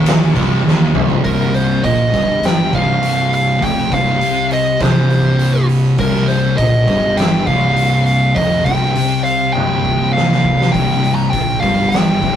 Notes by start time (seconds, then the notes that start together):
Already playing: D#1 D#2
0.06 snare, ride
0.34 C1 C2, kick, ride
0.64 D#1 D#2
0.68 snare
0.94 C1 C2, mid tom
1.10 floor tom
1.23 C1 C2 A#4, kick, open hi-hat
1.54 C5, open hi-hat
1.84 A#1 A#2 D#5, kick, open hi-hat
2.14 G1 G2, kick, open hi-hat
2.43 G5, snare, open hi-hat
2.73 C1 C2 F5, kick, open hi-hat
3.03 open hi-hat
3.33 F5, open hi-hat
3.62 F1 F2 G5, kick, open hi-hat
3.91 C1 C2 F5, kick, open hi-hat
4.21 C2 C3, open hi-hat
4.51 D#5, open hi-hat
4.81 C1 C2 C5, kick, snare, open hi-hat
5.10 open hi-hat
5.39 open hi-hat
5.69 open hi-hat
5.98 C1 C2 A#4, kick, open hi-hat
6.16 snare
6.28 C5, open hi-hat
6.57 A#1 A#2 D#5, kick, open hi-hat
6.86 G1 G2, kick, open hi-hat
7.17 G5, snare, open hi-hat
7.47 C1 C2 F5, kick, open hi-hat
7.77 open hi-hat
8.06 F5, open hi-hat
8.35 F1 F2 D#5, kick, open hi-hat
8.64 C1 C2 G5, kick, open hi-hat
8.95 C2 C3, open hi-hat
9.24 F5, open hi-hat
9.53 C1 C2 G5, high tom
9.85 kick
10.13 F5
10.17 snare
10.32 snare
10.44 kick
10.61 snare
10.72 C1 C2 G5, kick, open hi-hat
10.91 snare
11.04 open hi-hat
11.15 A#5
11.30 A#1 A#2 G5, kick, open hi-hat
11.60 G1 G2 F5, kick, open hi-hat
11.89 G5, open hi-hat
11.95 snare
12.22 C1 C2, kick, open hi-hat